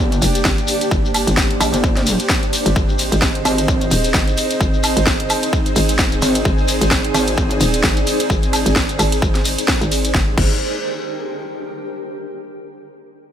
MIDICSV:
0, 0, Header, 1, 7, 480
1, 0, Start_track
1, 0, Tempo, 461538
1, 951, Time_signature, 4, 2, 24, 8
1, 13856, End_track
2, 0, Start_track
2, 0, Title_t, "Ambient pad"
2, 0, Program_c, 0, 92
2, 0, Note_on_c, 0, 62, 83
2, 0, Note_on_c, 0, 67, 85
2, 0, Note_on_c, 0, 72, 93
2, 0, Note_on_c, 0, 79, 93
2, 2870, Note_off_c, 0, 79, 0
2, 2870, Note_on_c, 0, 63, 90
2, 2871, Note_off_c, 0, 62, 0
2, 2872, Note_off_c, 0, 67, 0
2, 3289, Note_on_c, 0, 68, 78
2, 3836, Note_on_c, 0, 80, 82
2, 10550, Note_off_c, 0, 63, 0
2, 10550, Note_off_c, 0, 68, 0
2, 10550, Note_off_c, 0, 72, 0
2, 10550, Note_off_c, 0, 80, 0
2, 10552, Note_on_c, 0, 62, 81
2, 10634, Note_on_c, 0, 67, 81
2, 10707, Note_on_c, 0, 70, 81
2, 10770, Note_on_c, 0, 79, 81
2, 12429, Note_off_c, 0, 70, 0
2, 12429, Note_off_c, 0, 79, 0
2, 12430, Note_off_c, 0, 62, 0
2, 12430, Note_off_c, 0, 67, 0
2, 13856, End_track
3, 0, Start_track
3, 0, Title_t, "Analog synth pad"
3, 0, Program_c, 1, 89
3, 0, Note_on_c, 1, 58, 86
3, 0, Note_on_c, 1, 67, 80
3, 0, Note_on_c, 1, 74, 101
3, 2829, Note_off_c, 1, 58, 0
3, 2829, Note_off_c, 1, 67, 0
3, 2830, Note_off_c, 1, 74, 0
3, 2873, Note_on_c, 1, 60, 91
3, 2873, Note_on_c, 1, 68, 84
3, 2873, Note_on_c, 1, 75, 97
3, 6673, Note_off_c, 1, 75, 0
3, 6711, Note_on_c, 1, 74, 101
3, 10510, Note_off_c, 1, 60, 0
3, 10510, Note_off_c, 1, 68, 0
3, 10512, Note_off_c, 1, 74, 0
3, 13856, End_track
4, 0, Start_track
4, 0, Title_t, "FM bass"
4, 0, Program_c, 2, 39
4, 229, Note_on_c, 2, 29, 101
4, 453, Note_off_c, 2, 29, 0
4, 470, Note_on_c, 2, 31, 100
4, 693, Note_off_c, 2, 31, 0
4, 950, Note_on_c, 2, 31, 97
4, 1304, Note_off_c, 2, 31, 0
4, 1324, Note_on_c, 2, 31, 95
4, 1653, Note_off_c, 2, 31, 0
4, 2765, Note_on_c, 2, 31, 98
4, 2853, Note_off_c, 2, 31, 0
4, 2870, Note_on_c, 2, 32, 96
4, 3224, Note_off_c, 2, 32, 0
4, 3246, Note_on_c, 2, 32, 94
4, 3573, Note_off_c, 2, 32, 0
4, 4070, Note_on_c, 2, 27, 98
4, 4293, Note_off_c, 2, 27, 0
4, 4310, Note_on_c, 2, 32, 101
4, 4533, Note_off_c, 2, 32, 0
4, 4790, Note_on_c, 2, 32, 99
4, 5144, Note_off_c, 2, 32, 0
4, 5165, Note_on_c, 2, 32, 93
4, 5493, Note_off_c, 2, 32, 0
4, 5990, Note_on_c, 2, 32, 103
4, 6454, Note_off_c, 2, 32, 0
4, 6711, Note_on_c, 2, 32, 103
4, 7065, Note_off_c, 2, 32, 0
4, 7087, Note_on_c, 2, 32, 92
4, 7414, Note_off_c, 2, 32, 0
4, 7910, Note_on_c, 2, 27, 105
4, 8134, Note_off_c, 2, 27, 0
4, 8151, Note_on_c, 2, 32, 99
4, 8374, Note_off_c, 2, 32, 0
4, 8631, Note_on_c, 2, 32, 104
4, 8985, Note_off_c, 2, 32, 0
4, 9006, Note_on_c, 2, 32, 92
4, 9333, Note_off_c, 2, 32, 0
4, 9350, Note_on_c, 2, 32, 100
4, 9573, Note_off_c, 2, 32, 0
4, 9591, Note_on_c, 2, 32, 99
4, 9945, Note_off_c, 2, 32, 0
4, 10206, Note_on_c, 2, 32, 97
4, 10534, Note_off_c, 2, 32, 0
4, 10551, Note_on_c, 2, 31, 104
4, 10696, Note_off_c, 2, 31, 0
4, 10791, Note_on_c, 2, 31, 99
4, 11014, Note_off_c, 2, 31, 0
4, 13856, End_track
5, 0, Start_track
5, 0, Title_t, "Wobble bass"
5, 0, Program_c, 3, 39
5, 0, Note_on_c, 3, 31, 96
5, 213, Note_off_c, 3, 31, 0
5, 1669, Note_on_c, 3, 34, 96
5, 1784, Note_off_c, 3, 34, 0
5, 1806, Note_on_c, 3, 31, 98
5, 2265, Note_off_c, 3, 31, 0
5, 3590, Note_on_c, 3, 32, 97
5, 3814, Note_off_c, 3, 32, 0
5, 3830, Note_on_c, 3, 32, 100
5, 4054, Note_off_c, 3, 32, 0
5, 6470, Note_on_c, 3, 32, 102
5, 6694, Note_off_c, 3, 32, 0
5, 7430, Note_on_c, 3, 32, 101
5, 7654, Note_off_c, 3, 32, 0
5, 7671, Note_on_c, 3, 32, 99
5, 7894, Note_off_c, 3, 32, 0
5, 13856, End_track
6, 0, Start_track
6, 0, Title_t, "Shekere"
6, 126, Note_on_c, 9, 82, 43
6, 229, Note_off_c, 9, 82, 0
6, 229, Note_on_c, 9, 82, 96
6, 333, Note_off_c, 9, 82, 0
6, 365, Note_on_c, 9, 82, 43
6, 469, Note_off_c, 9, 82, 0
6, 474, Note_on_c, 9, 82, 56
6, 578, Note_off_c, 9, 82, 0
6, 608, Note_on_c, 9, 82, 35
6, 702, Note_off_c, 9, 82, 0
6, 702, Note_on_c, 9, 82, 96
6, 806, Note_off_c, 9, 82, 0
6, 853, Note_on_c, 9, 82, 41
6, 949, Note_off_c, 9, 82, 0
6, 949, Note_on_c, 9, 82, 52
6, 1053, Note_off_c, 9, 82, 0
6, 1094, Note_on_c, 9, 82, 39
6, 1193, Note_off_c, 9, 82, 0
6, 1193, Note_on_c, 9, 82, 96
6, 1297, Note_off_c, 9, 82, 0
6, 1329, Note_on_c, 9, 82, 39
6, 1432, Note_off_c, 9, 82, 0
6, 1432, Note_on_c, 9, 82, 55
6, 1536, Note_off_c, 9, 82, 0
6, 1675, Note_on_c, 9, 82, 98
6, 1779, Note_off_c, 9, 82, 0
6, 1800, Note_on_c, 9, 82, 43
6, 1904, Note_off_c, 9, 82, 0
6, 1909, Note_on_c, 9, 82, 51
6, 2013, Note_off_c, 9, 82, 0
6, 2049, Note_on_c, 9, 82, 39
6, 2147, Note_off_c, 9, 82, 0
6, 2147, Note_on_c, 9, 82, 101
6, 2251, Note_off_c, 9, 82, 0
6, 2287, Note_on_c, 9, 82, 44
6, 2391, Note_off_c, 9, 82, 0
6, 2398, Note_on_c, 9, 82, 59
6, 2502, Note_off_c, 9, 82, 0
6, 2525, Note_on_c, 9, 82, 42
6, 2629, Note_off_c, 9, 82, 0
6, 2636, Note_on_c, 9, 82, 101
6, 2740, Note_off_c, 9, 82, 0
6, 2764, Note_on_c, 9, 82, 44
6, 2867, Note_off_c, 9, 82, 0
6, 2867, Note_on_c, 9, 82, 56
6, 2971, Note_off_c, 9, 82, 0
6, 3004, Note_on_c, 9, 82, 41
6, 3107, Note_off_c, 9, 82, 0
6, 3107, Note_on_c, 9, 82, 90
6, 3211, Note_off_c, 9, 82, 0
6, 3245, Note_on_c, 9, 82, 39
6, 3346, Note_off_c, 9, 82, 0
6, 3346, Note_on_c, 9, 82, 51
6, 3450, Note_off_c, 9, 82, 0
6, 3591, Note_on_c, 9, 82, 96
6, 3695, Note_off_c, 9, 82, 0
6, 3728, Note_on_c, 9, 82, 40
6, 3830, Note_off_c, 9, 82, 0
6, 3830, Note_on_c, 9, 82, 60
6, 3934, Note_off_c, 9, 82, 0
6, 3961, Note_on_c, 9, 82, 36
6, 4065, Note_off_c, 9, 82, 0
6, 4068, Note_on_c, 9, 82, 86
6, 4172, Note_off_c, 9, 82, 0
6, 4201, Note_on_c, 9, 82, 43
6, 4305, Note_off_c, 9, 82, 0
6, 4309, Note_on_c, 9, 82, 53
6, 4413, Note_off_c, 9, 82, 0
6, 4452, Note_on_c, 9, 82, 40
6, 4548, Note_off_c, 9, 82, 0
6, 4548, Note_on_c, 9, 82, 94
6, 4652, Note_off_c, 9, 82, 0
6, 4689, Note_on_c, 9, 82, 41
6, 4792, Note_off_c, 9, 82, 0
6, 4792, Note_on_c, 9, 82, 57
6, 4896, Note_off_c, 9, 82, 0
6, 4925, Note_on_c, 9, 82, 36
6, 5028, Note_off_c, 9, 82, 0
6, 5028, Note_on_c, 9, 82, 93
6, 5132, Note_off_c, 9, 82, 0
6, 5172, Note_on_c, 9, 82, 37
6, 5270, Note_off_c, 9, 82, 0
6, 5270, Note_on_c, 9, 82, 51
6, 5374, Note_off_c, 9, 82, 0
6, 5512, Note_on_c, 9, 82, 91
6, 5616, Note_off_c, 9, 82, 0
6, 5642, Note_on_c, 9, 82, 36
6, 5746, Note_off_c, 9, 82, 0
6, 5750, Note_on_c, 9, 82, 52
6, 5854, Note_off_c, 9, 82, 0
6, 5885, Note_on_c, 9, 82, 37
6, 5989, Note_off_c, 9, 82, 0
6, 5992, Note_on_c, 9, 82, 93
6, 6096, Note_off_c, 9, 82, 0
6, 6123, Note_on_c, 9, 82, 37
6, 6227, Note_off_c, 9, 82, 0
6, 6232, Note_on_c, 9, 82, 47
6, 6336, Note_off_c, 9, 82, 0
6, 6363, Note_on_c, 9, 82, 33
6, 6467, Note_off_c, 9, 82, 0
6, 6468, Note_on_c, 9, 82, 91
6, 6572, Note_off_c, 9, 82, 0
6, 6600, Note_on_c, 9, 82, 39
6, 6704, Note_off_c, 9, 82, 0
6, 6706, Note_on_c, 9, 82, 47
6, 6810, Note_off_c, 9, 82, 0
6, 6844, Note_on_c, 9, 82, 37
6, 6948, Note_off_c, 9, 82, 0
6, 6948, Note_on_c, 9, 82, 101
6, 7052, Note_off_c, 9, 82, 0
6, 7091, Note_on_c, 9, 82, 40
6, 7189, Note_off_c, 9, 82, 0
6, 7189, Note_on_c, 9, 82, 55
6, 7293, Note_off_c, 9, 82, 0
6, 7435, Note_on_c, 9, 82, 96
6, 7539, Note_off_c, 9, 82, 0
6, 7564, Note_on_c, 9, 82, 39
6, 7668, Note_off_c, 9, 82, 0
6, 7670, Note_on_c, 9, 82, 55
6, 7774, Note_off_c, 9, 82, 0
6, 7801, Note_on_c, 9, 82, 39
6, 7905, Note_off_c, 9, 82, 0
6, 7909, Note_on_c, 9, 82, 87
6, 8013, Note_off_c, 9, 82, 0
6, 8046, Note_on_c, 9, 82, 40
6, 8150, Note_off_c, 9, 82, 0
6, 8151, Note_on_c, 9, 82, 49
6, 8255, Note_off_c, 9, 82, 0
6, 8285, Note_on_c, 9, 82, 37
6, 8389, Note_off_c, 9, 82, 0
6, 8391, Note_on_c, 9, 82, 88
6, 8495, Note_off_c, 9, 82, 0
6, 8525, Note_on_c, 9, 82, 36
6, 8629, Note_off_c, 9, 82, 0
6, 8635, Note_on_c, 9, 82, 54
6, 8739, Note_off_c, 9, 82, 0
6, 8763, Note_on_c, 9, 82, 38
6, 8867, Note_off_c, 9, 82, 0
6, 8882, Note_on_c, 9, 82, 93
6, 8986, Note_off_c, 9, 82, 0
6, 9004, Note_on_c, 9, 82, 42
6, 9108, Note_off_c, 9, 82, 0
6, 9112, Note_on_c, 9, 82, 46
6, 9216, Note_off_c, 9, 82, 0
6, 9244, Note_on_c, 9, 82, 38
6, 9348, Note_off_c, 9, 82, 0
6, 9353, Note_on_c, 9, 82, 88
6, 9457, Note_off_c, 9, 82, 0
6, 9489, Note_on_c, 9, 82, 38
6, 9593, Note_off_c, 9, 82, 0
6, 9593, Note_on_c, 9, 82, 51
6, 9697, Note_off_c, 9, 82, 0
6, 9717, Note_on_c, 9, 82, 35
6, 9821, Note_off_c, 9, 82, 0
6, 9826, Note_on_c, 9, 82, 85
6, 9930, Note_off_c, 9, 82, 0
6, 9969, Note_on_c, 9, 82, 40
6, 10070, Note_off_c, 9, 82, 0
6, 10070, Note_on_c, 9, 82, 49
6, 10174, Note_off_c, 9, 82, 0
6, 10210, Note_on_c, 9, 82, 41
6, 10314, Note_off_c, 9, 82, 0
6, 10315, Note_on_c, 9, 82, 83
6, 10419, Note_off_c, 9, 82, 0
6, 10453, Note_on_c, 9, 82, 41
6, 10557, Note_off_c, 9, 82, 0
6, 13856, End_track
7, 0, Start_track
7, 0, Title_t, "Drums"
7, 127, Note_on_c, 9, 42, 54
7, 230, Note_on_c, 9, 46, 113
7, 230, Note_on_c, 9, 51, 75
7, 231, Note_off_c, 9, 42, 0
7, 334, Note_off_c, 9, 46, 0
7, 334, Note_off_c, 9, 51, 0
7, 366, Note_on_c, 9, 42, 67
7, 467, Note_on_c, 9, 38, 113
7, 470, Note_off_c, 9, 42, 0
7, 470, Note_on_c, 9, 36, 115
7, 571, Note_off_c, 9, 38, 0
7, 574, Note_off_c, 9, 36, 0
7, 606, Note_on_c, 9, 42, 37
7, 709, Note_on_c, 9, 46, 97
7, 709, Note_on_c, 9, 51, 75
7, 710, Note_off_c, 9, 42, 0
7, 813, Note_off_c, 9, 46, 0
7, 813, Note_off_c, 9, 51, 0
7, 846, Note_on_c, 9, 42, 69
7, 950, Note_off_c, 9, 42, 0
7, 950, Note_on_c, 9, 36, 123
7, 1054, Note_off_c, 9, 36, 0
7, 1190, Note_on_c, 9, 46, 113
7, 1190, Note_on_c, 9, 51, 79
7, 1190, Note_on_c, 9, 76, 65
7, 1294, Note_off_c, 9, 46, 0
7, 1294, Note_off_c, 9, 51, 0
7, 1294, Note_off_c, 9, 76, 0
7, 1326, Note_on_c, 9, 42, 64
7, 1427, Note_on_c, 9, 38, 119
7, 1430, Note_off_c, 9, 42, 0
7, 1430, Note_on_c, 9, 36, 113
7, 1531, Note_off_c, 9, 38, 0
7, 1534, Note_off_c, 9, 36, 0
7, 1566, Note_on_c, 9, 42, 52
7, 1670, Note_off_c, 9, 42, 0
7, 1670, Note_on_c, 9, 46, 101
7, 1670, Note_on_c, 9, 51, 80
7, 1670, Note_on_c, 9, 76, 68
7, 1774, Note_off_c, 9, 46, 0
7, 1774, Note_off_c, 9, 51, 0
7, 1774, Note_off_c, 9, 76, 0
7, 1806, Note_on_c, 9, 42, 62
7, 1910, Note_off_c, 9, 42, 0
7, 1910, Note_on_c, 9, 36, 122
7, 2014, Note_off_c, 9, 36, 0
7, 2043, Note_on_c, 9, 38, 39
7, 2047, Note_on_c, 9, 42, 52
7, 2147, Note_off_c, 9, 38, 0
7, 2149, Note_on_c, 9, 46, 108
7, 2149, Note_on_c, 9, 51, 77
7, 2151, Note_off_c, 9, 42, 0
7, 2253, Note_off_c, 9, 46, 0
7, 2253, Note_off_c, 9, 51, 0
7, 2286, Note_on_c, 9, 42, 64
7, 2387, Note_on_c, 9, 38, 113
7, 2390, Note_off_c, 9, 42, 0
7, 2390, Note_on_c, 9, 36, 114
7, 2491, Note_off_c, 9, 38, 0
7, 2494, Note_off_c, 9, 36, 0
7, 2526, Note_on_c, 9, 42, 35
7, 2630, Note_off_c, 9, 42, 0
7, 2631, Note_on_c, 9, 46, 92
7, 2631, Note_on_c, 9, 51, 75
7, 2735, Note_off_c, 9, 46, 0
7, 2735, Note_off_c, 9, 51, 0
7, 2767, Note_on_c, 9, 42, 69
7, 2871, Note_off_c, 9, 42, 0
7, 2871, Note_on_c, 9, 36, 127
7, 2975, Note_off_c, 9, 36, 0
7, 3111, Note_on_c, 9, 46, 107
7, 3111, Note_on_c, 9, 51, 80
7, 3215, Note_off_c, 9, 46, 0
7, 3215, Note_off_c, 9, 51, 0
7, 3248, Note_on_c, 9, 42, 61
7, 3347, Note_on_c, 9, 38, 111
7, 3351, Note_on_c, 9, 36, 109
7, 3352, Note_off_c, 9, 42, 0
7, 3451, Note_off_c, 9, 38, 0
7, 3455, Note_off_c, 9, 36, 0
7, 3486, Note_on_c, 9, 42, 54
7, 3590, Note_off_c, 9, 42, 0
7, 3591, Note_on_c, 9, 46, 96
7, 3591, Note_on_c, 9, 51, 83
7, 3591, Note_on_c, 9, 76, 71
7, 3695, Note_off_c, 9, 46, 0
7, 3695, Note_off_c, 9, 51, 0
7, 3695, Note_off_c, 9, 76, 0
7, 3727, Note_on_c, 9, 42, 65
7, 3830, Note_on_c, 9, 36, 123
7, 3831, Note_off_c, 9, 42, 0
7, 3934, Note_off_c, 9, 36, 0
7, 3967, Note_on_c, 9, 42, 54
7, 4071, Note_off_c, 9, 42, 0
7, 4071, Note_on_c, 9, 46, 110
7, 4071, Note_on_c, 9, 51, 83
7, 4175, Note_off_c, 9, 46, 0
7, 4175, Note_off_c, 9, 51, 0
7, 4206, Note_on_c, 9, 42, 65
7, 4307, Note_on_c, 9, 38, 108
7, 4310, Note_off_c, 9, 42, 0
7, 4310, Note_on_c, 9, 36, 109
7, 4411, Note_off_c, 9, 38, 0
7, 4414, Note_off_c, 9, 36, 0
7, 4446, Note_on_c, 9, 42, 35
7, 4550, Note_off_c, 9, 42, 0
7, 4551, Note_on_c, 9, 46, 93
7, 4551, Note_on_c, 9, 51, 78
7, 4655, Note_off_c, 9, 46, 0
7, 4655, Note_off_c, 9, 51, 0
7, 4686, Note_on_c, 9, 42, 68
7, 4790, Note_off_c, 9, 42, 0
7, 4790, Note_on_c, 9, 36, 125
7, 4894, Note_off_c, 9, 36, 0
7, 5030, Note_on_c, 9, 46, 106
7, 5030, Note_on_c, 9, 51, 85
7, 5030, Note_on_c, 9, 76, 66
7, 5134, Note_off_c, 9, 46, 0
7, 5134, Note_off_c, 9, 51, 0
7, 5134, Note_off_c, 9, 76, 0
7, 5167, Note_on_c, 9, 42, 66
7, 5268, Note_on_c, 9, 38, 114
7, 5270, Note_on_c, 9, 36, 108
7, 5271, Note_off_c, 9, 42, 0
7, 5372, Note_off_c, 9, 38, 0
7, 5374, Note_off_c, 9, 36, 0
7, 5407, Note_on_c, 9, 42, 55
7, 5511, Note_off_c, 9, 42, 0
7, 5511, Note_on_c, 9, 46, 93
7, 5511, Note_on_c, 9, 51, 79
7, 5511, Note_on_c, 9, 76, 69
7, 5615, Note_off_c, 9, 46, 0
7, 5615, Note_off_c, 9, 51, 0
7, 5615, Note_off_c, 9, 76, 0
7, 5648, Note_on_c, 9, 42, 68
7, 5750, Note_on_c, 9, 36, 121
7, 5752, Note_off_c, 9, 42, 0
7, 5854, Note_off_c, 9, 36, 0
7, 5887, Note_on_c, 9, 42, 56
7, 5991, Note_off_c, 9, 42, 0
7, 5992, Note_on_c, 9, 46, 102
7, 5992, Note_on_c, 9, 51, 85
7, 6096, Note_off_c, 9, 46, 0
7, 6096, Note_off_c, 9, 51, 0
7, 6127, Note_on_c, 9, 42, 69
7, 6227, Note_on_c, 9, 38, 110
7, 6230, Note_on_c, 9, 36, 107
7, 6231, Note_off_c, 9, 42, 0
7, 6331, Note_off_c, 9, 38, 0
7, 6334, Note_off_c, 9, 36, 0
7, 6367, Note_on_c, 9, 42, 37
7, 6470, Note_on_c, 9, 46, 90
7, 6470, Note_on_c, 9, 51, 81
7, 6471, Note_off_c, 9, 42, 0
7, 6574, Note_off_c, 9, 46, 0
7, 6574, Note_off_c, 9, 51, 0
7, 6607, Note_on_c, 9, 42, 70
7, 6711, Note_off_c, 9, 42, 0
7, 6711, Note_on_c, 9, 36, 117
7, 6815, Note_off_c, 9, 36, 0
7, 6951, Note_on_c, 9, 46, 99
7, 6951, Note_on_c, 9, 51, 83
7, 7055, Note_off_c, 9, 46, 0
7, 7055, Note_off_c, 9, 51, 0
7, 7087, Note_on_c, 9, 42, 71
7, 7187, Note_on_c, 9, 38, 124
7, 7191, Note_off_c, 9, 42, 0
7, 7191, Note_on_c, 9, 36, 107
7, 7291, Note_off_c, 9, 38, 0
7, 7295, Note_off_c, 9, 36, 0
7, 7327, Note_on_c, 9, 42, 58
7, 7430, Note_on_c, 9, 46, 88
7, 7430, Note_on_c, 9, 51, 84
7, 7430, Note_on_c, 9, 76, 69
7, 7431, Note_off_c, 9, 42, 0
7, 7534, Note_off_c, 9, 46, 0
7, 7534, Note_off_c, 9, 51, 0
7, 7534, Note_off_c, 9, 76, 0
7, 7567, Note_on_c, 9, 42, 68
7, 7671, Note_off_c, 9, 42, 0
7, 7671, Note_on_c, 9, 36, 111
7, 7775, Note_off_c, 9, 36, 0
7, 7807, Note_on_c, 9, 42, 57
7, 7911, Note_off_c, 9, 42, 0
7, 7911, Note_on_c, 9, 46, 103
7, 7911, Note_on_c, 9, 51, 84
7, 8015, Note_off_c, 9, 46, 0
7, 8015, Note_off_c, 9, 51, 0
7, 8048, Note_on_c, 9, 42, 72
7, 8149, Note_on_c, 9, 38, 115
7, 8151, Note_on_c, 9, 36, 102
7, 8152, Note_off_c, 9, 42, 0
7, 8253, Note_off_c, 9, 38, 0
7, 8255, Note_off_c, 9, 36, 0
7, 8288, Note_on_c, 9, 42, 39
7, 8392, Note_off_c, 9, 42, 0
7, 8392, Note_on_c, 9, 46, 84
7, 8392, Note_on_c, 9, 51, 85
7, 8496, Note_off_c, 9, 46, 0
7, 8496, Note_off_c, 9, 51, 0
7, 8529, Note_on_c, 9, 42, 72
7, 8631, Note_on_c, 9, 36, 118
7, 8633, Note_off_c, 9, 42, 0
7, 8735, Note_off_c, 9, 36, 0
7, 8768, Note_on_c, 9, 42, 40
7, 8872, Note_off_c, 9, 42, 0
7, 8872, Note_on_c, 9, 46, 106
7, 8872, Note_on_c, 9, 51, 84
7, 8872, Note_on_c, 9, 76, 60
7, 8976, Note_off_c, 9, 46, 0
7, 8976, Note_off_c, 9, 51, 0
7, 8976, Note_off_c, 9, 76, 0
7, 9008, Note_on_c, 9, 42, 71
7, 9109, Note_on_c, 9, 38, 127
7, 9111, Note_on_c, 9, 36, 104
7, 9112, Note_off_c, 9, 42, 0
7, 9213, Note_off_c, 9, 38, 0
7, 9215, Note_off_c, 9, 36, 0
7, 9248, Note_on_c, 9, 42, 58
7, 9352, Note_off_c, 9, 42, 0
7, 9352, Note_on_c, 9, 46, 88
7, 9352, Note_on_c, 9, 51, 83
7, 9352, Note_on_c, 9, 76, 67
7, 9456, Note_off_c, 9, 46, 0
7, 9456, Note_off_c, 9, 51, 0
7, 9456, Note_off_c, 9, 76, 0
7, 9488, Note_on_c, 9, 42, 71
7, 9591, Note_on_c, 9, 36, 120
7, 9592, Note_off_c, 9, 42, 0
7, 9695, Note_off_c, 9, 36, 0
7, 9725, Note_on_c, 9, 38, 39
7, 9728, Note_on_c, 9, 42, 57
7, 9829, Note_off_c, 9, 38, 0
7, 9832, Note_off_c, 9, 42, 0
7, 9832, Note_on_c, 9, 46, 105
7, 9832, Note_on_c, 9, 51, 86
7, 9936, Note_off_c, 9, 46, 0
7, 9936, Note_off_c, 9, 51, 0
7, 9968, Note_on_c, 9, 42, 71
7, 10069, Note_on_c, 9, 38, 121
7, 10071, Note_on_c, 9, 36, 106
7, 10072, Note_off_c, 9, 42, 0
7, 10173, Note_off_c, 9, 38, 0
7, 10175, Note_off_c, 9, 36, 0
7, 10208, Note_on_c, 9, 42, 39
7, 10312, Note_off_c, 9, 42, 0
7, 10313, Note_on_c, 9, 46, 85
7, 10313, Note_on_c, 9, 51, 81
7, 10417, Note_off_c, 9, 46, 0
7, 10417, Note_off_c, 9, 51, 0
7, 10449, Note_on_c, 9, 42, 73
7, 10551, Note_on_c, 9, 36, 118
7, 10552, Note_on_c, 9, 38, 88
7, 10553, Note_off_c, 9, 42, 0
7, 10655, Note_off_c, 9, 36, 0
7, 10656, Note_off_c, 9, 38, 0
7, 10791, Note_on_c, 9, 36, 117
7, 10792, Note_on_c, 9, 49, 89
7, 10895, Note_off_c, 9, 36, 0
7, 10896, Note_off_c, 9, 49, 0
7, 13856, End_track
0, 0, End_of_file